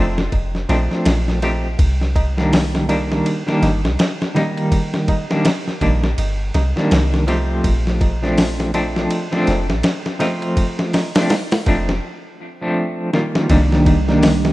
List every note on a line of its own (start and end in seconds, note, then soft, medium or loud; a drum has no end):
0.00 0.29 F1 loud
0.00 0.20 F3 medium
0.00 0.20 A3 medium
0.00 0.20 C4 medium
0.00 0.20 D4 medium
0.18 snare soft
0.18 tabla na soft
0.32 0.66 F1 medium
0.32 kick medium
0.32 ride medium
0.32 tabla na soft
0.55 snare soft
0.55 tabla na soft
0.69 0.88 A#1 medium
0.69 1.39 F3 medium
0.69 1.39 A3 medium
0.69 1.39 C4 medium
0.69 1.39 D4 medium
0.69 snare soft
0.69 ride medium
0.69 tabla na medium
0.91 snare soft
0.91 tabla na soft
1.05 1.76 A#1 medium
1.05 snare loud
1.05 ride medium
1.05 tabla na medium
1.28 snare soft
1.28 tabla na soft
1.42 1.66 F3 medium
1.42 1.67 A3 medium
1.42 1.67 C4 medium
1.42 1.67 G4 medium
1.42 snare soft
1.42 ride medium
1.42 tabla na medium
1.64 tabla na soft
1.79 3.22 C2 loud
1.79 kick loud
1.79 ride medium
1.79 tabla na soft
2.01 snare soft
2.01 tabla na soft
2.16 kick medium
2.16 ride medium
2.16 tabla na medium
2.37 2.85 D#3 medium
2.37 2.85 G3 medium
2.37 2.85 A#3 medium
2.37 2.86 D4 medium
2.37 snare soft
2.37 tabla na soft
2.53 snare loud
2.53 open hi-hat medium
2.53 tabla na soft
2.74 snare soft
2.74 tabla na soft
2.89 3.42 D#3 medium
2.89 3.42 G3 medium
2.89 3.42 A#3 medium
2.89 3.42 D4 medium
2.89 ride medium
2.89 tabla na medium
3.10 snare soft
3.10 tabla na soft
3.26 ride medium
3.26 tabla na soft
3.46 3.80 D#3 medium
3.46 3.80 G3 medium
3.46 3.80 A#3 medium
3.46 3.80 D4 loud
3.46 snare soft
3.46 tabla na soft
3.62 3.85 G1 medium
3.62 snare soft
3.62 ride medium
3.62 tabla na medium
3.83 3.97 C2 loud
3.83 snare medium
3.83 tabla na soft
3.99 snare loud
3.99 ride medium
3.99 tabla na medium
4.21 snare soft
4.21 tabla na soft
4.35 5.24 D#3 medium
4.35 5.25 G3 medium
4.35 5.25 A#3 medium
4.35 5.26 D#4 medium
4.35 snare medium
4.35 ride medium
4.35 tabla na medium
4.57 ride soft
4.57 tabla na soft
4.72 kick loud
4.72 ride medium
4.72 tabla na soft
4.94 snare soft
4.94 tabla na soft
5.08 kick medium
5.08 ride medium
5.08 tabla na medium
5.30 5.48 D#3 medium
5.30 5.48 G3 medium
5.30 5.49 A#3 medium
5.30 5.49 D4 medium
5.30 snare medium
5.30 tabla na soft
5.45 snare loud
5.45 ride medium
5.45 tabla na medium
5.66 snare soft
5.66 tabla na soft
5.81 6.14 A#1 loud
5.81 6.05 D#3 medium
5.81 6.05 G3 medium
5.81 6.06 A#3 medium
5.81 6.06 D4 medium
5.81 kick medium
5.81 ride medium
5.81 tabla na medium
6.04 snare medium
6.04 tabla na soft
6.18 6.51 G1 medium
6.18 ride medium
6.18 tabla na medium
6.41 tabla na soft
6.54 6.74 C2 medium
6.54 snare soft
6.54 ride medium
6.54 tabla na medium
6.76 7.24 D#3 medium
6.76 7.24 G3 medium
6.76 7.25 A#3 medium
6.76 7.25 D4 medium
6.76 snare soft
6.76 tabla na soft
6.91 7.62 C2 loud
6.91 snare loud
6.91 ride medium
6.91 tabla na soft
7.13 snare soft
7.13 tabla na soft
7.27 8.17 F3 medium
7.27 8.18 A3 medium
7.27 8.18 C4 medium
7.27 8.18 G4 medium
7.27 snare soft
7.27 ride medium
7.27 tabla na medium
7.50 tabla na soft
7.64 9.08 A#1 medium
7.64 kick loud
7.64 ride medium
7.64 tabla na soft
7.86 snare soft
7.86 tabla na soft
8.01 kick loud
8.01 ride medium
8.01 tabla na medium
8.22 8.70 F3 medium
8.22 8.71 A3 medium
8.22 8.71 C4 medium
8.22 8.71 D4 medium
8.22 snare soft
8.22 tabla na soft
8.38 snare loud
8.38 open hi-hat medium
8.38 tabla na soft
8.60 snare soft
8.74 9.27 F3 medium
8.74 9.27 A3 medium
8.74 9.27 C4 medium
8.74 9.28 D4 medium
8.74 ride medium
8.74 tabla na medium
8.96 snare soft
8.96 tabla na soft
9.10 ride medium
9.10 tabla na soft
9.31 9.65 F3 medium
9.31 9.65 A3 medium
9.31 9.65 C4 medium
9.31 9.65 D4 loud
9.31 snare soft
9.31 tabla na soft
9.47 9.71 F1 medium
9.47 snare soft
9.47 ride medium
9.47 tabla na medium
9.69 9.82 A#1 medium
9.69 snare medium
9.69 tabla na soft
9.83 snare loud
9.83 ride medium
9.83 tabla na soft
10.06 snare soft
10.06 tabla na soft
10.19 11.10 F3 medium
10.19 11.10 A3 medium
10.19 11.10 C4 medium
10.19 11.11 F4 medium
10.19 snare medium
10.19 ride medium
10.19 tabla na medium
10.42 ride soft
10.42 tabla na soft
10.57 kick loud
10.57 ride medium
10.57 tabla na soft
10.79 snare medium
10.93 snare loud
10.93 open hi-hat medium
10.93 tabla na medium
11.15 11.33 F3 medium
11.15 11.34 A3 medium
11.15 11.34 C4 medium
11.15 11.34 D4 medium
11.15 snare loud
11.15 open hi-hat medium
11.15 tabla na soft
11.30 snare loud
11.30 open hi-hat medium
11.30 tabla na soft
11.51 snare loud
11.51 open hi-hat medium
11.51 tabla na soft
11.66 12.00 F1 loud
11.66 11.91 F3 medium
11.66 11.91 A3 medium
11.66 11.91 C4 medium
11.66 11.91 D4 medium
11.66 kick medium
11.66 ride medium
11.66 tabla na medium
11.89 snare medium
11.89 tabla na soft
12.61 13.10 F3 medium
12.61 13.10 A3 medium
12.61 13.10 C4 medium
12.61 13.10 D4 medium
13.13 13.49 D#3 medium
13.13 13.49 G3 medium
13.13 13.49 A#3 medium
13.13 13.87 F4 medium
13.13 snare medium
13.35 snare medium
13.49 14.53 C2 loud
13.49 13.99 D#3 loud
13.49 14.53 G3 medium
13.49 14.00 G3 medium
13.49 14.00 A#3 medium
13.49 14.00 D4 loud
13.49 14.53 G4 medium
13.49 kick loud
13.49 ride medium
13.49 tabla na soft
13.72 snare soft
13.72 tabla na soft
13.86 kick loud
13.86 ride medium
13.86 tabla na medium
14.08 14.53 D#3 medium
14.08 14.53 G3 medium
14.08 14.53 A#3 medium
14.08 14.53 D4 medium
14.08 snare soft
14.08 tabla na soft
14.23 snare loud
14.23 open hi-hat medium
14.23 tabla na soft
14.45 snare medium